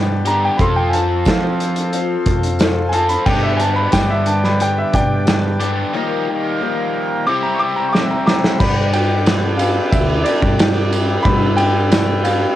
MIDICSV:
0, 0, Header, 1, 7, 480
1, 0, Start_track
1, 0, Tempo, 666667
1, 431, Time_signature, 4, 2, 24, 8
1, 9040, End_track
2, 0, Start_track
2, 0, Title_t, "Grand piano"
2, 0, Program_c, 0, 0
2, 198, Note_on_c, 0, 82, 105
2, 306, Note_off_c, 0, 82, 0
2, 325, Note_on_c, 0, 79, 95
2, 410, Note_on_c, 0, 83, 68
2, 430, Note_off_c, 0, 79, 0
2, 438, Note_off_c, 0, 83, 0
2, 443, Note_on_c, 0, 84, 91
2, 549, Note_off_c, 0, 84, 0
2, 551, Note_on_c, 0, 79, 97
2, 640, Note_on_c, 0, 80, 69
2, 662, Note_off_c, 0, 79, 0
2, 669, Note_off_c, 0, 80, 0
2, 674, Note_on_c, 0, 81, 92
2, 1139, Note_off_c, 0, 81, 0
2, 2079, Note_on_c, 0, 80, 78
2, 2109, Note_off_c, 0, 80, 0
2, 2111, Note_on_c, 0, 81, 109
2, 2224, Note_off_c, 0, 81, 0
2, 2225, Note_on_c, 0, 83, 89
2, 2341, Note_off_c, 0, 83, 0
2, 2346, Note_on_c, 0, 79, 98
2, 2462, Note_off_c, 0, 79, 0
2, 2468, Note_on_c, 0, 76, 93
2, 2565, Note_on_c, 0, 80, 69
2, 2583, Note_off_c, 0, 76, 0
2, 2594, Note_off_c, 0, 80, 0
2, 2596, Note_on_c, 0, 81, 94
2, 2705, Note_on_c, 0, 83, 92
2, 2707, Note_off_c, 0, 81, 0
2, 2821, Note_off_c, 0, 83, 0
2, 2827, Note_on_c, 0, 79, 96
2, 2943, Note_off_c, 0, 79, 0
2, 2951, Note_on_c, 0, 76, 98
2, 3065, Note_off_c, 0, 76, 0
2, 3074, Note_on_c, 0, 81, 96
2, 3186, Note_off_c, 0, 81, 0
2, 3199, Note_on_c, 0, 83, 84
2, 3309, Note_off_c, 0, 83, 0
2, 3323, Note_on_c, 0, 79, 92
2, 3431, Note_off_c, 0, 79, 0
2, 3442, Note_on_c, 0, 76, 94
2, 3550, Note_off_c, 0, 76, 0
2, 3553, Note_on_c, 0, 74, 87
2, 3561, Note_on_c, 0, 79, 106
2, 4966, Note_off_c, 0, 74, 0
2, 4970, Note_off_c, 0, 79, 0
2, 5233, Note_on_c, 0, 86, 110
2, 5345, Note_off_c, 0, 86, 0
2, 5349, Note_on_c, 0, 82, 97
2, 5437, Note_on_c, 0, 85, 68
2, 5463, Note_off_c, 0, 82, 0
2, 5467, Note_off_c, 0, 85, 0
2, 5469, Note_on_c, 0, 86, 105
2, 5583, Note_off_c, 0, 86, 0
2, 5590, Note_on_c, 0, 82, 98
2, 5680, Note_on_c, 0, 85, 77
2, 5704, Note_off_c, 0, 82, 0
2, 5708, Note_on_c, 0, 86, 109
2, 5710, Note_off_c, 0, 85, 0
2, 5823, Note_off_c, 0, 86, 0
2, 5838, Note_on_c, 0, 82, 89
2, 5938, Note_off_c, 0, 82, 0
2, 5949, Note_on_c, 0, 82, 92
2, 5952, Note_on_c, 0, 86, 110
2, 6175, Note_off_c, 0, 82, 0
2, 6186, Note_off_c, 0, 86, 0
2, 6191, Note_on_c, 0, 83, 102
2, 6433, Note_on_c, 0, 79, 103
2, 6439, Note_off_c, 0, 83, 0
2, 6892, Note_on_c, 0, 77, 91
2, 6926, Note_off_c, 0, 79, 0
2, 7139, Note_on_c, 0, 76, 91
2, 7149, Note_off_c, 0, 77, 0
2, 7371, Note_on_c, 0, 74, 85
2, 7392, Note_off_c, 0, 76, 0
2, 7831, Note_off_c, 0, 74, 0
2, 8080, Note_on_c, 0, 83, 107
2, 8326, Note_on_c, 0, 79, 110
2, 8342, Note_off_c, 0, 83, 0
2, 8810, Note_on_c, 0, 77, 93
2, 8831, Note_off_c, 0, 79, 0
2, 9040, Note_off_c, 0, 77, 0
2, 9040, End_track
3, 0, Start_track
3, 0, Title_t, "Accordion"
3, 0, Program_c, 1, 21
3, 0, Note_on_c, 1, 71, 80
3, 0, Note_on_c, 1, 74, 71
3, 0, Note_on_c, 1, 79, 72
3, 0, Note_on_c, 1, 86, 80
3, 411, Note_off_c, 1, 79, 0
3, 412, Note_off_c, 1, 86, 0
3, 413, Note_off_c, 1, 71, 0
3, 414, Note_off_c, 1, 74, 0
3, 424, Note_on_c, 1, 84, 82
3, 428, Note_on_c, 1, 72, 77
3, 433, Note_on_c, 1, 69, 78
3, 434, Note_on_c, 1, 77, 69
3, 2332, Note_off_c, 1, 84, 0
3, 2334, Note_off_c, 1, 72, 0
3, 2336, Note_off_c, 1, 69, 0
3, 2337, Note_off_c, 1, 77, 0
3, 2350, Note_on_c, 1, 79, 78
3, 2353, Note_on_c, 1, 71, 87
3, 2353, Note_on_c, 1, 74, 76
3, 2354, Note_on_c, 1, 86, 91
3, 4256, Note_off_c, 1, 71, 0
3, 4256, Note_off_c, 1, 74, 0
3, 4256, Note_off_c, 1, 86, 0
3, 4268, Note_on_c, 1, 82, 93
3, 4275, Note_on_c, 1, 77, 70
3, 4278, Note_on_c, 1, 70, 79
3, 5222, Note_off_c, 1, 82, 0
3, 5225, Note_off_c, 1, 77, 0
3, 5227, Note_off_c, 1, 70, 0
3, 5248, Note_on_c, 1, 76, 70
3, 5248, Note_on_c, 1, 88, 86
3, 5249, Note_on_c, 1, 72, 75
3, 6163, Note_off_c, 1, 79, 0
3, 6191, Note_off_c, 1, 76, 0
3, 6191, Note_off_c, 1, 88, 0
3, 6192, Note_off_c, 1, 72, 0
3, 6199, Note_on_c, 1, 74, 75
3, 6199, Note_on_c, 1, 86, 90
3, 6203, Note_on_c, 1, 71, 80
3, 6205, Note_on_c, 1, 79, 76
3, 8093, Note_off_c, 1, 86, 0
3, 8108, Note_on_c, 1, 88, 94
3, 9040, Note_off_c, 1, 71, 0
3, 9040, Note_off_c, 1, 74, 0
3, 9040, Note_off_c, 1, 79, 0
3, 9040, Note_off_c, 1, 88, 0
3, 9040, End_track
4, 0, Start_track
4, 0, Title_t, "Steel-string acoustic guitar"
4, 0, Program_c, 2, 25
4, 0, Note_on_c, 2, 55, 60
4, 0, Note_on_c, 2, 59, 63
4, 0, Note_on_c, 2, 62, 63
4, 0, Note_on_c, 2, 67, 65
4, 172, Note_off_c, 2, 67, 0
4, 180, Note_on_c, 2, 67, 48
4, 181, Note_off_c, 2, 62, 0
4, 183, Note_off_c, 2, 55, 0
4, 186, Note_off_c, 2, 59, 0
4, 189, Note_on_c, 2, 62, 47
4, 195, Note_on_c, 2, 59, 48
4, 199, Note_on_c, 2, 55, 41
4, 413, Note_off_c, 2, 55, 0
4, 416, Note_on_c, 2, 53, 79
4, 421, Note_off_c, 2, 59, 0
4, 424, Note_on_c, 2, 60, 74
4, 425, Note_off_c, 2, 62, 0
4, 426, Note_off_c, 2, 67, 0
4, 428, Note_on_c, 2, 65, 81
4, 428, Note_on_c, 2, 69, 78
4, 895, Note_off_c, 2, 53, 0
4, 900, Note_off_c, 2, 60, 0
4, 903, Note_on_c, 2, 53, 60
4, 906, Note_off_c, 2, 65, 0
4, 909, Note_off_c, 2, 69, 0
4, 909, Note_on_c, 2, 60, 63
4, 915, Note_on_c, 2, 65, 70
4, 917, Note_on_c, 2, 69, 61
4, 1375, Note_off_c, 2, 53, 0
4, 1382, Note_off_c, 2, 60, 0
4, 1384, Note_off_c, 2, 65, 0
4, 1384, Note_on_c, 2, 53, 90
4, 1390, Note_off_c, 2, 69, 0
4, 1391, Note_on_c, 2, 60, 91
4, 1393, Note_on_c, 2, 65, 95
4, 1399, Note_on_c, 2, 69, 96
4, 1859, Note_off_c, 2, 53, 0
4, 1866, Note_off_c, 2, 60, 0
4, 1867, Note_on_c, 2, 53, 67
4, 1874, Note_off_c, 2, 65, 0
4, 1875, Note_on_c, 2, 60, 65
4, 1877, Note_off_c, 2, 69, 0
4, 1883, Note_on_c, 2, 65, 72
4, 1887, Note_on_c, 2, 69, 76
4, 2102, Note_off_c, 2, 69, 0
4, 2111, Note_off_c, 2, 53, 0
4, 2111, Note_on_c, 2, 69, 49
4, 2114, Note_off_c, 2, 60, 0
4, 2114, Note_off_c, 2, 65, 0
4, 2122, Note_on_c, 2, 65, 44
4, 2132, Note_on_c, 2, 60, 41
4, 2348, Note_on_c, 2, 43, 77
4, 2353, Note_off_c, 2, 69, 0
4, 2354, Note_off_c, 2, 60, 0
4, 2354, Note_on_c, 2, 50, 81
4, 2356, Note_on_c, 2, 55, 79
4, 2357, Note_on_c, 2, 59, 80
4, 2358, Note_off_c, 2, 65, 0
4, 2361, Note_on_c, 2, 62, 77
4, 2363, Note_on_c, 2, 67, 85
4, 2580, Note_off_c, 2, 67, 0
4, 2588, Note_off_c, 2, 62, 0
4, 2589, Note_on_c, 2, 67, 51
4, 2591, Note_off_c, 2, 43, 0
4, 2595, Note_off_c, 2, 50, 0
4, 2595, Note_off_c, 2, 55, 0
4, 2596, Note_off_c, 2, 59, 0
4, 2596, Note_on_c, 2, 62, 45
4, 2603, Note_on_c, 2, 59, 46
4, 2607, Note_on_c, 2, 55, 38
4, 2822, Note_off_c, 2, 55, 0
4, 2827, Note_off_c, 2, 59, 0
4, 2831, Note_on_c, 2, 55, 57
4, 2832, Note_off_c, 2, 67, 0
4, 2835, Note_on_c, 2, 59, 71
4, 2836, Note_off_c, 2, 62, 0
4, 2844, Note_on_c, 2, 62, 62
4, 2850, Note_on_c, 2, 67, 70
4, 3302, Note_on_c, 2, 43, 80
4, 3305, Note_on_c, 2, 50, 76
4, 3306, Note_off_c, 2, 59, 0
4, 3307, Note_off_c, 2, 55, 0
4, 3307, Note_off_c, 2, 62, 0
4, 3309, Note_on_c, 2, 55, 82
4, 3314, Note_on_c, 2, 59, 83
4, 3316, Note_off_c, 2, 67, 0
4, 3316, Note_on_c, 2, 62, 88
4, 3319, Note_on_c, 2, 67, 90
4, 3785, Note_off_c, 2, 55, 0
4, 3788, Note_on_c, 2, 55, 61
4, 3789, Note_off_c, 2, 43, 0
4, 3789, Note_off_c, 2, 59, 0
4, 3791, Note_off_c, 2, 50, 0
4, 3796, Note_off_c, 2, 62, 0
4, 3797, Note_on_c, 2, 59, 62
4, 3804, Note_off_c, 2, 67, 0
4, 3804, Note_on_c, 2, 62, 68
4, 3807, Note_on_c, 2, 67, 69
4, 4030, Note_off_c, 2, 67, 0
4, 4032, Note_off_c, 2, 55, 0
4, 4037, Note_off_c, 2, 59, 0
4, 4039, Note_on_c, 2, 67, 53
4, 4040, Note_off_c, 2, 62, 0
4, 4049, Note_on_c, 2, 62, 48
4, 4056, Note_on_c, 2, 59, 44
4, 4061, Note_on_c, 2, 55, 41
4, 4273, Note_on_c, 2, 51, 96
4, 4275, Note_off_c, 2, 55, 0
4, 4277, Note_off_c, 2, 59, 0
4, 4277, Note_on_c, 2, 53, 86
4, 4278, Note_off_c, 2, 67, 0
4, 4280, Note_off_c, 2, 62, 0
4, 4280, Note_on_c, 2, 58, 96
4, 4283, Note_on_c, 2, 63, 97
4, 4288, Note_on_c, 2, 67, 101
4, 4509, Note_off_c, 2, 67, 0
4, 4514, Note_off_c, 2, 51, 0
4, 4517, Note_off_c, 2, 53, 0
4, 4517, Note_on_c, 2, 67, 59
4, 4518, Note_off_c, 2, 58, 0
4, 4520, Note_off_c, 2, 63, 0
4, 4528, Note_on_c, 2, 63, 51
4, 4535, Note_on_c, 2, 58, 49
4, 4751, Note_off_c, 2, 58, 0
4, 4751, Note_on_c, 2, 53, 64
4, 4757, Note_off_c, 2, 63, 0
4, 4757, Note_off_c, 2, 67, 0
4, 4759, Note_on_c, 2, 58, 70
4, 4766, Note_on_c, 2, 63, 69
4, 4774, Note_on_c, 2, 67, 73
4, 5233, Note_off_c, 2, 53, 0
4, 5234, Note_on_c, 2, 48, 76
4, 5237, Note_off_c, 2, 58, 0
4, 5239, Note_off_c, 2, 67, 0
4, 5241, Note_off_c, 2, 63, 0
4, 5241, Note_on_c, 2, 55, 90
4, 5244, Note_on_c, 2, 64, 93
4, 5245, Note_on_c, 2, 60, 84
4, 5248, Note_on_c, 2, 67, 96
4, 5711, Note_off_c, 2, 55, 0
4, 5714, Note_off_c, 2, 48, 0
4, 5717, Note_off_c, 2, 60, 0
4, 5719, Note_off_c, 2, 64, 0
4, 5719, Note_on_c, 2, 55, 62
4, 5721, Note_off_c, 2, 67, 0
4, 5725, Note_on_c, 2, 60, 62
4, 5732, Note_on_c, 2, 64, 67
4, 5738, Note_on_c, 2, 67, 69
4, 5951, Note_off_c, 2, 67, 0
4, 5957, Note_off_c, 2, 55, 0
4, 5959, Note_on_c, 2, 67, 53
4, 5960, Note_off_c, 2, 60, 0
4, 5960, Note_off_c, 2, 64, 0
4, 5969, Note_on_c, 2, 64, 42
4, 5976, Note_on_c, 2, 60, 43
4, 6194, Note_on_c, 2, 43, 78
4, 6195, Note_on_c, 2, 50, 77
4, 6196, Note_off_c, 2, 60, 0
4, 6197, Note_off_c, 2, 67, 0
4, 6199, Note_off_c, 2, 64, 0
4, 6199, Note_on_c, 2, 59, 88
4, 6201, Note_on_c, 2, 55, 81
4, 6202, Note_on_c, 2, 62, 86
4, 6204, Note_on_c, 2, 67, 90
4, 6422, Note_off_c, 2, 67, 0
4, 6430, Note_on_c, 2, 67, 54
4, 6433, Note_off_c, 2, 62, 0
4, 6434, Note_off_c, 2, 43, 0
4, 6434, Note_off_c, 2, 50, 0
4, 6436, Note_off_c, 2, 59, 0
4, 6437, Note_off_c, 2, 55, 0
4, 6441, Note_on_c, 2, 62, 59
4, 6446, Note_on_c, 2, 59, 47
4, 6453, Note_on_c, 2, 55, 46
4, 6670, Note_off_c, 2, 55, 0
4, 6672, Note_off_c, 2, 67, 0
4, 6676, Note_off_c, 2, 59, 0
4, 6677, Note_off_c, 2, 62, 0
4, 6678, Note_on_c, 2, 55, 60
4, 6685, Note_on_c, 2, 59, 70
4, 6691, Note_on_c, 2, 62, 62
4, 6695, Note_on_c, 2, 67, 70
4, 6902, Note_off_c, 2, 67, 0
4, 6907, Note_off_c, 2, 62, 0
4, 6911, Note_on_c, 2, 67, 47
4, 6915, Note_off_c, 2, 55, 0
4, 6915, Note_on_c, 2, 62, 53
4, 6918, Note_off_c, 2, 59, 0
4, 6926, Note_on_c, 2, 59, 47
4, 6930, Note_on_c, 2, 55, 43
4, 7382, Note_off_c, 2, 67, 0
4, 7385, Note_on_c, 2, 67, 50
4, 7389, Note_off_c, 2, 59, 0
4, 7390, Note_off_c, 2, 62, 0
4, 7392, Note_on_c, 2, 62, 54
4, 7397, Note_on_c, 2, 59, 48
4, 7399, Note_off_c, 2, 55, 0
4, 7402, Note_on_c, 2, 55, 44
4, 7607, Note_off_c, 2, 55, 0
4, 7616, Note_off_c, 2, 59, 0
4, 7616, Note_on_c, 2, 55, 63
4, 7625, Note_on_c, 2, 59, 60
4, 7626, Note_off_c, 2, 62, 0
4, 7627, Note_off_c, 2, 67, 0
4, 7635, Note_on_c, 2, 62, 69
4, 7638, Note_on_c, 2, 67, 69
4, 8098, Note_off_c, 2, 59, 0
4, 8098, Note_on_c, 2, 43, 76
4, 8099, Note_on_c, 2, 50, 82
4, 8102, Note_off_c, 2, 55, 0
4, 8104, Note_on_c, 2, 55, 86
4, 8105, Note_off_c, 2, 62, 0
4, 8107, Note_off_c, 2, 67, 0
4, 8107, Note_on_c, 2, 59, 91
4, 8107, Note_on_c, 2, 62, 85
4, 8110, Note_on_c, 2, 67, 83
4, 8324, Note_off_c, 2, 67, 0
4, 8333, Note_on_c, 2, 67, 54
4, 8334, Note_off_c, 2, 62, 0
4, 8337, Note_off_c, 2, 59, 0
4, 8343, Note_off_c, 2, 43, 0
4, 8343, Note_off_c, 2, 50, 0
4, 8343, Note_on_c, 2, 62, 50
4, 8345, Note_on_c, 2, 59, 51
4, 8346, Note_off_c, 2, 55, 0
4, 8354, Note_on_c, 2, 55, 44
4, 8559, Note_off_c, 2, 55, 0
4, 8567, Note_on_c, 2, 55, 64
4, 8570, Note_off_c, 2, 59, 0
4, 8576, Note_off_c, 2, 62, 0
4, 8579, Note_on_c, 2, 59, 61
4, 8580, Note_off_c, 2, 67, 0
4, 8584, Note_on_c, 2, 62, 71
4, 8590, Note_on_c, 2, 67, 68
4, 8802, Note_off_c, 2, 67, 0
4, 8809, Note_off_c, 2, 62, 0
4, 8811, Note_on_c, 2, 67, 52
4, 8815, Note_off_c, 2, 59, 0
4, 8817, Note_off_c, 2, 55, 0
4, 8818, Note_on_c, 2, 62, 52
4, 8824, Note_on_c, 2, 59, 46
4, 8834, Note_on_c, 2, 55, 42
4, 9040, Note_off_c, 2, 55, 0
4, 9040, Note_off_c, 2, 59, 0
4, 9040, Note_off_c, 2, 62, 0
4, 9040, Note_off_c, 2, 67, 0
4, 9040, End_track
5, 0, Start_track
5, 0, Title_t, "Overdriven electric guitar"
5, 0, Program_c, 3, 29
5, 0, Note_on_c, 3, 43, 85
5, 0, Note_on_c, 3, 50, 91
5, 0, Note_on_c, 3, 55, 85
5, 0, Note_on_c, 3, 59, 95
5, 0, Note_on_c, 3, 62, 86
5, 0, Note_on_c, 3, 67, 89
5, 172, Note_off_c, 3, 43, 0
5, 174, Note_off_c, 3, 67, 0
5, 177, Note_off_c, 3, 50, 0
5, 179, Note_off_c, 3, 55, 0
5, 181, Note_off_c, 3, 59, 0
5, 181, Note_off_c, 3, 62, 0
5, 204, Note_on_c, 3, 50, 70
5, 210, Note_on_c, 3, 43, 70
5, 423, Note_off_c, 3, 50, 0
5, 426, Note_off_c, 3, 43, 0
5, 2129, Note_on_c, 3, 53, 64
5, 2348, Note_off_c, 3, 53, 0
5, 4052, Note_on_c, 3, 50, 78
5, 4055, Note_on_c, 3, 43, 75
5, 4269, Note_off_c, 3, 50, 0
5, 4271, Note_off_c, 3, 43, 0
5, 4277, Note_on_c, 3, 55, 91
5, 5221, Note_off_c, 3, 55, 0
5, 9040, End_track
6, 0, Start_track
6, 0, Title_t, "Fingered electric bass"
6, 0, Program_c, 4, 33
6, 0, Note_on_c, 4, 43, 91
6, 347, Note_off_c, 4, 43, 0
6, 428, Note_on_c, 4, 41, 102
6, 911, Note_on_c, 4, 53, 90
6, 922, Note_off_c, 4, 41, 0
6, 1553, Note_off_c, 4, 53, 0
6, 1628, Note_on_c, 4, 41, 97
6, 2272, Note_off_c, 4, 41, 0
6, 2350, Note_on_c, 4, 43, 98
6, 2780, Note_off_c, 4, 43, 0
6, 2831, Note_on_c, 4, 43, 93
6, 3474, Note_off_c, 4, 43, 0
6, 3555, Note_on_c, 4, 43, 91
6, 4196, Note_off_c, 4, 43, 0
6, 6195, Note_on_c, 4, 43, 97
6, 7047, Note_off_c, 4, 43, 0
6, 7147, Note_on_c, 4, 38, 104
6, 7362, Note_off_c, 4, 38, 0
6, 7504, Note_on_c, 4, 43, 87
6, 8039, Note_off_c, 4, 43, 0
6, 8102, Note_on_c, 4, 43, 96
6, 8957, Note_off_c, 4, 43, 0
6, 9040, End_track
7, 0, Start_track
7, 0, Title_t, "Drums"
7, 186, Note_on_c, 9, 42, 70
7, 258, Note_off_c, 9, 42, 0
7, 428, Note_on_c, 9, 36, 107
7, 429, Note_on_c, 9, 42, 69
7, 500, Note_off_c, 9, 36, 0
7, 501, Note_off_c, 9, 42, 0
7, 672, Note_on_c, 9, 42, 72
7, 744, Note_off_c, 9, 42, 0
7, 903, Note_on_c, 9, 54, 87
7, 910, Note_on_c, 9, 36, 80
7, 915, Note_on_c, 9, 42, 65
7, 922, Note_on_c, 9, 38, 107
7, 975, Note_off_c, 9, 54, 0
7, 982, Note_off_c, 9, 36, 0
7, 987, Note_off_c, 9, 42, 0
7, 994, Note_off_c, 9, 38, 0
7, 1154, Note_on_c, 9, 42, 70
7, 1226, Note_off_c, 9, 42, 0
7, 1268, Note_on_c, 9, 42, 70
7, 1340, Note_off_c, 9, 42, 0
7, 1389, Note_on_c, 9, 42, 67
7, 1461, Note_off_c, 9, 42, 0
7, 1626, Note_on_c, 9, 42, 68
7, 1628, Note_on_c, 9, 36, 89
7, 1698, Note_off_c, 9, 42, 0
7, 1700, Note_off_c, 9, 36, 0
7, 1752, Note_on_c, 9, 42, 68
7, 1824, Note_off_c, 9, 42, 0
7, 1864, Note_on_c, 9, 54, 88
7, 1870, Note_on_c, 9, 42, 68
7, 1877, Note_on_c, 9, 38, 112
7, 1936, Note_off_c, 9, 54, 0
7, 1942, Note_off_c, 9, 42, 0
7, 1949, Note_off_c, 9, 38, 0
7, 2107, Note_on_c, 9, 42, 71
7, 2179, Note_off_c, 9, 42, 0
7, 2226, Note_on_c, 9, 42, 64
7, 2298, Note_off_c, 9, 42, 0
7, 2347, Note_on_c, 9, 49, 93
7, 2349, Note_on_c, 9, 36, 106
7, 2419, Note_off_c, 9, 49, 0
7, 2421, Note_off_c, 9, 36, 0
7, 2589, Note_on_c, 9, 42, 71
7, 2661, Note_off_c, 9, 42, 0
7, 2822, Note_on_c, 9, 42, 65
7, 2829, Note_on_c, 9, 36, 78
7, 2829, Note_on_c, 9, 38, 99
7, 2831, Note_on_c, 9, 54, 89
7, 2894, Note_off_c, 9, 42, 0
7, 2901, Note_off_c, 9, 36, 0
7, 2901, Note_off_c, 9, 38, 0
7, 2903, Note_off_c, 9, 54, 0
7, 3065, Note_on_c, 9, 42, 71
7, 3137, Note_off_c, 9, 42, 0
7, 3194, Note_on_c, 9, 38, 32
7, 3266, Note_off_c, 9, 38, 0
7, 3312, Note_on_c, 9, 42, 74
7, 3384, Note_off_c, 9, 42, 0
7, 3552, Note_on_c, 9, 42, 77
7, 3554, Note_on_c, 9, 36, 90
7, 3624, Note_off_c, 9, 42, 0
7, 3626, Note_off_c, 9, 36, 0
7, 3793, Note_on_c, 9, 42, 78
7, 3794, Note_on_c, 9, 54, 105
7, 3801, Note_on_c, 9, 38, 107
7, 3865, Note_off_c, 9, 42, 0
7, 3866, Note_off_c, 9, 54, 0
7, 3873, Note_off_c, 9, 38, 0
7, 4034, Note_on_c, 9, 42, 72
7, 4106, Note_off_c, 9, 42, 0
7, 5723, Note_on_c, 9, 38, 65
7, 5795, Note_off_c, 9, 38, 0
7, 5959, Note_on_c, 9, 38, 89
7, 6031, Note_off_c, 9, 38, 0
7, 6080, Note_on_c, 9, 38, 88
7, 6152, Note_off_c, 9, 38, 0
7, 6195, Note_on_c, 9, 36, 112
7, 6197, Note_on_c, 9, 49, 111
7, 6267, Note_off_c, 9, 36, 0
7, 6269, Note_off_c, 9, 49, 0
7, 6433, Note_on_c, 9, 51, 78
7, 6505, Note_off_c, 9, 51, 0
7, 6670, Note_on_c, 9, 54, 107
7, 6671, Note_on_c, 9, 51, 102
7, 6678, Note_on_c, 9, 38, 106
7, 6742, Note_off_c, 9, 54, 0
7, 6743, Note_off_c, 9, 51, 0
7, 6750, Note_off_c, 9, 38, 0
7, 6907, Note_on_c, 9, 51, 85
7, 6912, Note_on_c, 9, 54, 79
7, 6979, Note_off_c, 9, 51, 0
7, 6984, Note_off_c, 9, 54, 0
7, 7147, Note_on_c, 9, 36, 118
7, 7147, Note_on_c, 9, 51, 115
7, 7151, Note_on_c, 9, 54, 80
7, 7219, Note_off_c, 9, 36, 0
7, 7219, Note_off_c, 9, 51, 0
7, 7223, Note_off_c, 9, 54, 0
7, 7384, Note_on_c, 9, 51, 83
7, 7390, Note_on_c, 9, 54, 77
7, 7456, Note_off_c, 9, 51, 0
7, 7462, Note_off_c, 9, 54, 0
7, 7505, Note_on_c, 9, 36, 87
7, 7577, Note_off_c, 9, 36, 0
7, 7626, Note_on_c, 9, 51, 118
7, 7629, Note_on_c, 9, 54, 100
7, 7633, Note_on_c, 9, 38, 119
7, 7698, Note_off_c, 9, 51, 0
7, 7701, Note_off_c, 9, 54, 0
7, 7705, Note_off_c, 9, 38, 0
7, 7865, Note_on_c, 9, 51, 83
7, 7873, Note_on_c, 9, 54, 77
7, 7937, Note_off_c, 9, 51, 0
7, 7945, Note_off_c, 9, 54, 0
7, 8100, Note_on_c, 9, 36, 115
7, 8100, Note_on_c, 9, 51, 107
7, 8172, Note_off_c, 9, 36, 0
7, 8172, Note_off_c, 9, 51, 0
7, 8335, Note_on_c, 9, 51, 76
7, 8407, Note_off_c, 9, 51, 0
7, 8579, Note_on_c, 9, 51, 98
7, 8579, Note_on_c, 9, 54, 97
7, 8586, Note_on_c, 9, 38, 113
7, 8651, Note_off_c, 9, 51, 0
7, 8651, Note_off_c, 9, 54, 0
7, 8658, Note_off_c, 9, 38, 0
7, 8818, Note_on_c, 9, 51, 84
7, 8821, Note_on_c, 9, 54, 76
7, 8890, Note_off_c, 9, 51, 0
7, 8893, Note_off_c, 9, 54, 0
7, 9040, End_track
0, 0, End_of_file